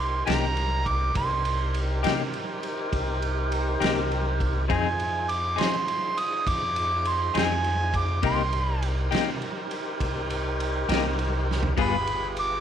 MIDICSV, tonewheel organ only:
0, 0, Header, 1, 2, 480
1, 0, Start_track
1, 0, Key_signature, -3, "minor"
1, 0, Tempo, 589971
1, 941, Time_signature, 12, 3, 24, 8
1, 10254, End_track
2, 0, Start_track
2, 0, Title_t, "Tonewheel organ"
2, 0, Program_c, 0, 16
2, 0, Note_on_c, 0, 63, 62
2, 0, Note_on_c, 0, 67, 62
2, 0, Note_on_c, 0, 70, 63
2, 0, Note_on_c, 0, 72, 61
2, 911, Note_off_c, 0, 67, 0
2, 913, Note_off_c, 0, 63, 0
2, 913, Note_off_c, 0, 72, 0
2, 914, Note_off_c, 0, 70, 0
2, 929, Note_on_c, 0, 72, 65
2, 930, Note_on_c, 0, 63, 69
2, 930, Note_on_c, 0, 67, 69
2, 930, Note_on_c, 0, 70, 64
2, 3786, Note_off_c, 0, 63, 0
2, 3786, Note_off_c, 0, 70, 0
2, 3786, Note_off_c, 0, 72, 0
2, 3787, Note_off_c, 0, 67, 0
2, 3814, Note_on_c, 0, 63, 63
2, 3815, Note_on_c, 0, 65, 64
2, 3818, Note_on_c, 0, 68, 64
2, 3818, Note_on_c, 0, 72, 65
2, 6668, Note_off_c, 0, 63, 0
2, 6669, Note_off_c, 0, 65, 0
2, 6670, Note_off_c, 0, 68, 0
2, 6670, Note_off_c, 0, 72, 0
2, 6695, Note_on_c, 0, 63, 62
2, 6697, Note_on_c, 0, 67, 65
2, 6698, Note_on_c, 0, 72, 62
2, 6700, Note_on_c, 0, 70, 66
2, 9547, Note_off_c, 0, 63, 0
2, 9548, Note_off_c, 0, 67, 0
2, 9548, Note_off_c, 0, 72, 0
2, 9549, Note_off_c, 0, 70, 0
2, 9582, Note_on_c, 0, 67, 62
2, 9585, Note_on_c, 0, 65, 66
2, 9586, Note_on_c, 0, 68, 67
2, 9586, Note_on_c, 0, 71, 65
2, 10254, Note_off_c, 0, 65, 0
2, 10254, Note_off_c, 0, 67, 0
2, 10254, Note_off_c, 0, 68, 0
2, 10254, Note_off_c, 0, 71, 0
2, 10254, End_track
0, 0, End_of_file